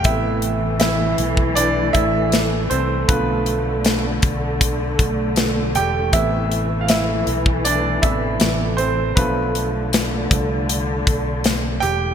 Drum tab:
HH |x-x-x-x-x-x-x-x-|x-x-x-x-x-x-x-x-|x-x-x-x-x-x-x-x-|x-x-x-x-x-x-x-x-|
SD |----o-------o---|----o-------o---|----o-------o---|----o-------o---|
BD |o------o--o-----|o-----o-o-o-----|o------o--o-----|o-----o---o-----|